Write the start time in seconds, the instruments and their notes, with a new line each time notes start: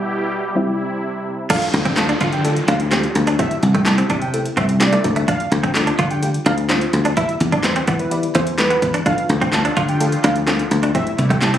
Already playing: supersaw synth B2 G3 E4 G4, synth pluck G3 B3 E4
0.55 supersaw synth C3 E4, synth pluck G3 C4 E4
1.50 synth pluck A3 D4 F4 A4, clean electric guitar D4, analog synth lead F5, kick, closed hi-hat, crash, downlifter
1.62 closed hi-hat
1.74 slap bass D2, muted clean electric guitar stroke, closed hi-hat
1.85 clean electric guitar C4, analog synth lead G5, kick, closed hi-hat
1.96 synth pluck A3 D4 F4 A4, analog synth lead A5, muted clean electric guitar stroke, snare, clap, closed hi-hat
2.09 clean electric guitar D4, closed hi-hat
2.21 slap bass D3, clean electric guitar F4, kick, closed hi-hat
2.32 analog synth lead G5, closed hi-hat
2.44 synth pluck A3 D4 F4 A4, closed hi-hat
2.56 closed hi-hat
2.68 slap bass D2, clean electric guitar D4, analog synth lead F5, closed hi-hat
2.80 closed hi-hat
2.91 synth pluck A3 D4 F4 G4, clean electric guitar C4, snare, clap, closed hi-hat
3.04 closed hi-hat
3.15 slap bass D2, muted clean electric guitar stroke, closed hi-hat
3.27 clean electric guitar D4, closed hi-hat
3.39 synth pluck A3 C4 E4 G4, clean electric guitar C4, analog synth lead E5, kick, closed hi-hat
3.51 closed hi-hat
3.63 slap bass C2, muted clean electric guitar stroke, closed hi-hat
3.75 clean electric guitar A3, analog synth lead G5, kick, closed hi-hat
3.85 synth pluck A3 C4 E4 G4, analog synth lead A5, muted clean electric guitar stroke, snare, clap, closed hi-hat
3.98 clean electric guitar C4, closed hi-hat
4.10 slap bass C3, clean electric guitar D4, kick, closed hi-hat
4.22 analog synth lead G5, closed hi-hat
4.33 synth pluck A3 C4 E4 A4, closed hi-hat
4.45 closed hi-hat
4.57 slap bass C2, clean electric guitar C4, analog synth lead E5, kick, closed hi-hat
4.69 closed hi-hat
4.80 synth pluck A3 C4 E4 G4, analog synth lead D5, snare, clap, closed hi-hat
4.92 clean electric guitar A3, closed hi-hat
5.04 slap bass D2, synth pluck A3 D4 F4 A4, muted clean electric guitar stroke, kick, closed hi-hat
5.16 clean electric guitar A3, closed hi-hat
5.28 clean electric guitar D4, analog synth lead F5, kick, closed hi-hat
5.40 closed hi-hat
5.52 slap bass D2, muted clean electric guitar stroke, closed hi-hat
5.63 clean electric guitar C4, analog synth lead G5, kick, closed hi-hat
5.74 synth pluck A3 D4 F4 A4, analog synth lead A5, muted clean electric guitar stroke, snare, clap, closed hi-hat
5.87 clean electric guitar D4, closed hi-hat
5.99 slap bass D3, clean electric guitar F4, kick, closed hi-hat
6.11 analog synth lead G5, closed hi-hat
6.22 synth pluck A3 D4 F4 G4, closed hi-hat
6.34 closed hi-hat
6.46 slap bass D2, clean electric guitar D4, analog synth lead F5, closed hi-hat
6.58 closed hi-hat
6.69 synth pluck A3 D4 F4 C5, clean electric guitar C4, snare, clap, closed hi-hat
6.81 closed hi-hat
6.93 slap bass D2, muted clean electric guitar stroke, closed hi-hat
7.05 clean electric guitar D4, closed hi-hat
7.17 synth pluck B3 E4 G4 B4, clean electric guitar E4, analog synth lead E5, kick, closed hi-hat
7.29 closed hi-hat
7.40 slap bass E2, muted clean electric guitar stroke, closed hi-hat
7.52 clean electric guitar D4, analog synth lead D5, kick, closed hi-hat
7.63 synth pluck B3 E4 G4 B4, analog synth lead C5, muted clean electric guitar stroke, snare, clap, closed hi-hat
7.76 clean electric guitar C4, closed hi-hat
7.87 slap bass E3, clean electric guitar B3, kick, closed hi-hat
7.99 analog synth lead B4, closed hi-hat
8.11 synth pluck B3 E4 G4 D5, closed hi-hat
8.23 closed hi-hat
8.35 slap bass E2, clean electric guitar A3, analog synth lead C5, closed hi-hat
8.47 closed hi-hat
8.58 synth pluck B3 E4 G4 A4, analog synth lead B4, snare, clap, closed hi-hat
8.70 clean electric guitar B3, closed hi-hat
8.82 slap bass E2, muted clean electric guitar stroke, kick, closed hi-hat
8.94 clean electric guitar D4, closed hi-hat
9.06 supersaw synth D3 F3 A3 F4, synth pluck A3 D4 F4 A4, clean electric guitar D4, analog synth lead F5, kick, closed hi-hat
9.18 closed hi-hat
9.29 slap bass D2, muted clean electric guitar stroke, closed hi-hat
9.41 clean electric guitar C4, analog synth lead G5, kick, closed hi-hat
9.52 synth pluck A3 D4 F4 A4, analog synth lead A5, muted clean electric guitar stroke, snare, clap, closed hi-hat
9.65 clean electric guitar D4, closed hi-hat
9.77 slap bass D3, clean electric guitar F4, kick, closed hi-hat
9.88 analog synth lead G5, closed hi-hat
10.00 synth pluck A3 D4 F4 A4, closed hi-hat
10.12 closed hi-hat
10.24 slap bass D2, clean electric guitar D4, analog synth lead F5, closed hi-hat
10.36 closed hi-hat
10.47 synth pluck A3 D4 F4 A4, clean electric guitar C4, snare, clap, closed hi-hat
10.59 closed hi-hat
10.71 slap bass D2, muted clean electric guitar stroke, closed hi-hat
10.83 clean electric guitar D4, closed hi-hat
10.95 supersaw synth C3 G3 A3 E4, synth pluck A3 C4 E4 G4, clean electric guitar C4, analog synth lead E5, kick, closed hi-hat
11.07 closed hi-hat
11.18 slap bass C2, muted clean electric guitar stroke, closed hi-hat
11.30 clean electric guitar A3, analog synth lead G5, kick, closed hi-hat
11.41 synth pluck A3 C4 E4 G4, analog synth lead A5, muted clean electric guitar stroke, snare, clap, closed hi-hat
11.54 clean electric guitar C4, closed hi-hat